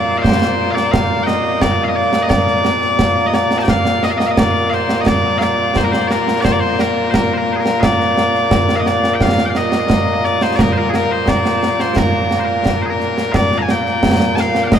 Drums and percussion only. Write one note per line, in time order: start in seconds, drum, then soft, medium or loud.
0.24 concert bass drum medium
0.24 snare loud
0.42 snare medium
0.77 snare medium
0.94 concert bass drum medium
0.94 snare loud
1.27 snare medium
1.62 concert bass drum medium
1.62 snare loud
2.13 snare medium
2.30 concert bass drum medium
2.30 snare loud
2.47 snare soft
2.65 snare medium
2.82 snare soft
2.99 concert bass drum medium
2.99 snare loud
3.34 snare medium
3.51 snare medium
3.68 concert bass drum medium
3.68 snare loud
3.85 snare medium
4.03 snare medium
4.20 snare medium
4.37 concert bass drum medium
4.37 snare loud
4.72 snare soft
4.89 snare medium
5.06 concert bass drum medium
5.06 snare loud
5.41 snare medium
5.76 concert bass drum medium
5.76 snare loud
5.93 snare medium
6.11 snare medium
6.28 snare medium
6.45 concert bass drum medium
6.45 snare loud
6.79 snare medium
7.14 concert bass drum medium
7.14 snare loud
7.66 snare medium
7.83 concert bass drum medium
7.83 snare loud
8.01 snare soft
8.17 snare medium
8.35 snare soft
8.51 concert bass drum medium
8.51 snare loud
8.69 snare medium
8.86 snare medium
9.04 snare medium
9.21 concert bass drum medium
9.21 snare loud
9.38 snare medium
9.55 snare medium
9.72 snare medium
9.90 concert bass drum medium
9.90 snare loud
10.24 snare soft
10.41 snare medium
10.59 concert bass drum medium
10.59 snare loud
10.94 snare medium
11.28 concert bass drum medium
11.28 snare loud
11.45 snare medium
11.63 snare medium
11.80 snare medium
11.96 concert bass drum medium
11.96 snare loud
12.31 snare medium
12.66 concert bass drum medium
12.66 snare loud
13.00 snare soft
13.18 snare medium
13.34 concert bass drum medium
13.34 snare loud
13.52 snare soft
13.69 snare medium
13.86 snare soft
14.03 concert bass drum medium
14.03 snare loud
14.20 snare medium
14.37 snare medium
14.55 snare medium
14.72 concert bass drum medium
14.72 snare loud